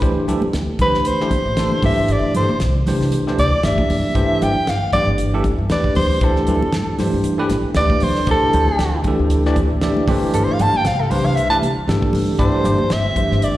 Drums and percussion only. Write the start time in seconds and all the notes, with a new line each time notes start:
0.02 kick, closed hi-hat
0.28 closed hi-hat, low conga
0.42 high conga
0.53 snare, closed hi-hat
0.79 kick, closed hi-hat, low conga
0.94 snare
1.05 closed hi-hat
1.20 snare
1.31 kick, closed hi-hat, high conga
1.57 snare, closed hi-hat
1.72 high conga
1.82 kick, open hi-hat, high conga, low conga
2.08 closed hi-hat
2.34 closed hi-hat, low conga
2.49 high conga
2.60 snare, closed hi-hat
2.87 snare, open hi-hat, low conga
3.01 snare
3.12 closed hi-hat
3.27 snare
3.38 closed hi-hat, high conga
3.63 snare, closed hi-hat
3.78 kick, high conga
3.90 open hi-hat, high conga, low conga
4.15 kick, closed hi-hat
4.42 closed hi-hat, low conga
4.67 snare, closed hi-hat
4.93 kick, closed hi-hat, low conga
5.18 closed hi-hat
5.44 kick, closed hi-hat, high conga
5.70 snare, closed hi-hat
5.84 kick
5.95 open hi-hat, high conga, low conga
6.21 kick, closed hi-hat
6.36 snare
6.47 closed hi-hat, low conga
6.62 high conga
6.72 snare, closed hi-hat
6.99 snare, open hi-hat, low conga
7.24 closed hi-hat
7.49 snare, closed hi-hat, high conga
7.74 snare, closed hi-hat
7.90 kick, high conga
8.00 open hi-hat, high conga, low conga
8.15 snare
8.27 kick, closed hi-hat
8.53 closed hi-hat, low conga
8.68 high conga
8.79 snare, closed hi-hat
9.04 kick, closed hi-hat, low conga
9.30 closed hi-hat
9.45 snare
9.56 kick, closed hi-hat, high conga
9.81 snare, closed hi-hat
9.97 high conga
10.08 kick, open hi-hat, high conga, low conga
10.34 closed hi-hat
10.59 closed hi-hat, low conga
10.75 high conga
10.85 snare, closed hi-hat
11.11 open hi-hat, low conga
11.37 closed hi-hat
11.62 closed hi-hat, high conga
11.89 snare, closed hi-hat
12.02 kick, high conga
12.13 open hi-hat, high conga, low conga
12.39 kick, closed hi-hat
12.64 closed hi-hat, low conga
12.78 high conga
12.90 snare, closed hi-hat
13.16 kick, closed hi-hat, high conga, low conga
13.31 snare
13.42 closed hi-hat